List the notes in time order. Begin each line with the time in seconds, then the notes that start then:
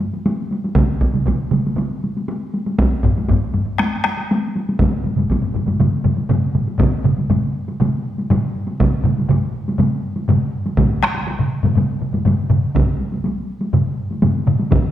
0.01 taiko high
0.13 taiko high
0.26 taiko high
0.51 taiko high
0.64 taiko high
0.75 taiko, taiko mid, taiko high
1.01 taiko
1.14 taiko mid, taiko high
1.26 taiko, taiko mid, taiko high
1.51 taiko mid, taiko high
1.66 taiko high
1.76 taiko mid, taiko high
2.04 taiko high
2.17 taiko high
2.29 taiko high
2.54 taiko high
2.67 taiko high
2.79 taiko, taiko high
3.03 taiko, taiko low-mid
3.16 taiko high
3.28 taiko, taiko low-mid, taiko high
3.54 taiko low-mid, taiko high
3.65 taiko low-mid
3.78 taiko rim, taiko high
4.04 taiko rim, taiko high
4.18 taiko high
4.31 taiko high
4.56 taiko high
4.69 taiko high
4.79 taiko, taiko low-mid, taiko mid, taiko high
4.92 taiko low-mid, taiko mid
5.04 taiko low-mid, taiko mid, taiko high
5.17 taiko low-mid, taiko mid, taiko high
5.30 taiko, taiko high
5.42 taiko low-mid, taiko mid
5.54 taiko low-mid, taiko mid, taiko high
5.66 taiko low-mid, taiko mid, taiko high
5.80 taiko low-mid, taiko mid, taiko high
6.04 taiko low-mid, taiko mid, taiko high
6.18 taiko high
6.29 taiko low-mid, taiko mid, taiko high
6.55 taiko low-mid, taiko mid, taiko high
6.68 taiko high
6.79 taiko, taiko low-mid, taiko mid, taiko high
7.04 taiko low-mid, taiko mid, taiko high
7.18 taiko high
7.30 taiko low-mid, taiko mid, taiko high
7.68 taiko high
7.80 taiko low-mid, taiko mid, taiko high
8.18 taiko high
8.30 taiko low-mid, taiko mid, taiko high
8.68 taiko high
8.80 taiko, taiko low-mid, taiko mid, taiko high
9.04 taiko low-mid, taiko mid, taiko high
9.18 taiko high
9.29 taiko low-mid, taiko mid, taiko high
9.68 taiko high
9.78 taiko low-mid, taiko mid, taiko high
10.17 taiko high
10.29 taiko low-mid, taiko mid, taiko high
10.66 taiko high
10.77 taiko, taiko low-mid, taiko mid, taiko high
11.03 taiko rim, taiko high
11.15 taiko high
11.27 taiko high
11.39 taiko low-mid, taiko mid
11.63 taiko low-mid, taiko mid, taiko high
11.75 taiko low-mid, taiko mid, taiko high
12.01 taiko low-mid, taiko mid
12.13 taiko low-mid, taiko mid, taiko high
12.25 taiko low-mid, taiko mid, taiko high
12.50 taiko low-mid, taiko mid
12.75 taiko, taiko low-mid, taiko mid, taiko high
13.00 taiko high
13.12 taiko high
13.24 taiko high
13.61 taiko high
13.73 taiko low-mid, taiko mid, taiko high
14.11 taiko high
14.22 taiko low-mid, taiko mid, taiko high
14.47 taiko low-mid, taiko mid
14.60 taiko high
14.71 taiko, taiko low-mid, taiko mid, taiko high